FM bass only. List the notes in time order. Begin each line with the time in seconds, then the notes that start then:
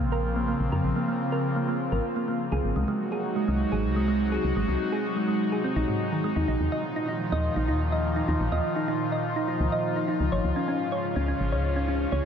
0.00 A#1
0.60 A#1
0.72 F2
0.84 A#1
1.92 G#1
2.52 C2
2.64 G#1
2.76 C2
3.48 C2
3.72 G#1
3.84 C2
4.44 C2
4.56 G#1
4.68 C2
5.76 A#1
6.36 D#2
6.48 A#1
6.60 D#2
7.32 D#2
7.56 A#1
7.68 D#2
8.28 D#2
8.40 A#1
8.52 D#2
9.60 C#2
10.20 C#2
10.32 G#1
10.44 C#2
11.16 C#2
11.40 G#1
11.52 C#2
12.12 C#2